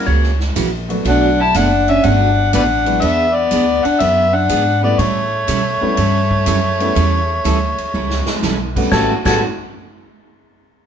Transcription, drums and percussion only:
0.23 snare
0.40 snare
0.56 hi-hat pedal, ride
0.90 ride
1.05 ride
1.54 hi-hat pedal, ride
1.88 ride
2.04 ride
2.53 hi-hat pedal, ride
2.86 ride
3.02 ride
3.51 hi-hat pedal, ride
3.85 ride
4.00 ride
4.49 hi-hat pedal, ride
4.99 ride
5.48 hi-hat pedal, ride
5.97 ride
6.31 kick
6.46 hi-hat pedal, ride
6.80 ride
6.96 ride
7.45 hi-hat pedal, ride
7.78 ride
8.10 snare
8.26 snare
8.43 snare, hi-hat pedal
8.76 kick, crash
8.92 kick, snare
9.26 kick, snare, crash

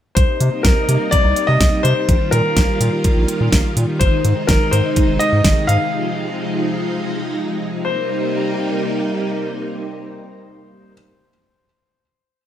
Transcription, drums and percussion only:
0.17 kick, closed hi-hat
0.41 closed hi-hat
0.65 kick, snare, closed hi-hat
0.89 closed hi-hat
1.12 kick, closed hi-hat
1.36 closed hi-hat
1.61 kick, snare, closed hi-hat
1.85 closed hi-hat
2.09 kick, closed hi-hat
2.32 closed hi-hat
2.57 kick, snare, closed hi-hat
2.81 closed hi-hat
3.04 kick, closed hi-hat
3.28 closed hi-hat
3.52 kick, snare, closed hi-hat
3.77 closed hi-hat
4.01 kick, closed hi-hat
4.25 closed hi-hat
4.49 kick, snare, closed hi-hat
4.73 closed hi-hat
4.96 kick, closed hi-hat
5.20 closed hi-hat
5.44 kick, snare, closed hi-hat
5.69 closed hi-hat

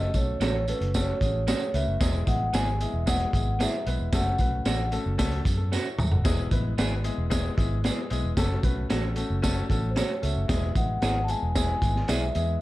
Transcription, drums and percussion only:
0.14 kick, closed hi-hat, tambourine
0.41 snare, closed hi-hat, tambourine
0.68 closed hi-hat, tambourine
0.82 closed hi-hat
0.94 kick, snare, closed hi-hat, tambourine
1.21 kick, closed hi-hat, tambourine
1.48 snare, closed hi-hat, tambourine
1.74 closed hi-hat, tambourine
2.01 kick, snare, closed hi-hat, tambourine
2.27 kick, closed hi-hat, tambourine
2.54 snare, closed hi-hat, tambourine
2.81 closed hi-hat, tambourine
3.07 kick, snare, closed hi-hat, tambourine
3.20 closed hi-hat
3.33 kick, closed hi-hat, tambourine
3.60 snare, closed hi-hat, tambourine
3.87 closed hi-hat, tambourine
4.13 kick, snare, closed hi-hat, tambourine
4.38 kick, closed hi-hat, tambourine
4.65 snare, closed hi-hat, tambourine
4.92 closed hi-hat, tambourine
5.19 kick, snare, closed hi-hat, tambourine
5.32 closed hi-hat
5.45 kick, closed hi-hat, tambourine
5.72 snare, tambourine
5.99 mid tom, tambourine
6.12 floor tom
6.25 kick, snare, closed hi-hat, tambourine
6.51 kick, closed hi-hat, tambourine
6.78 snare, closed hi-hat, tambourine
7.04 closed hi-hat, tambourine
7.31 kick, snare, closed hi-hat, tambourine
7.58 kick, closed hi-hat, tambourine
7.84 snare, closed hi-hat, tambourine
8.10 closed hi-hat, tambourine
8.37 kick, snare, closed hi-hat, tambourine
8.63 kick, closed hi-hat, tambourine
8.90 snare, closed hi-hat, tambourine
9.16 closed hi-hat, tambourine
9.44 kick, snare, closed hi-hat, tambourine
9.70 kick, closed hi-hat, tambourine
9.96 snare, closed hi-hat, tambourine
10.23 closed hi-hat, tambourine
10.49 kick, snare, closed hi-hat, tambourine
10.75 kick, closed hi-hat, tambourine
11.02 snare, closed hi-hat, tambourine
11.28 closed hi-hat, tambourine
11.55 kick, snare, closed hi-hat, tambourine
11.82 kick, closed hi-hat, tambourine
11.96 snare
12.08 snare, closed hi-hat, tambourine
12.35 closed hi-hat, tambourine

